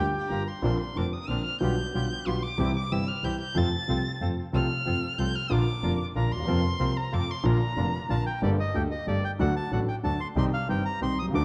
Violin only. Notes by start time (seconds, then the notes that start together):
Already playing: G5
0.30 A#5
0.48 C6
0.64 C6
0.80 C6
0.97 D6
1.13 D#6
1.29 F6
1.44 F6
1.61 G6
2.27 C6
2.43 D6
2.76 D6
2.92 E6
3.09 F6
3.24 G6
3.41 G6
3.57 A6
4.55 F6
5.19 G6
5.36 F6
5.52 D6
6.16 A#5
6.32 C6
6.97 A#5
7.14 D6
7.31 C6
7.45 A#5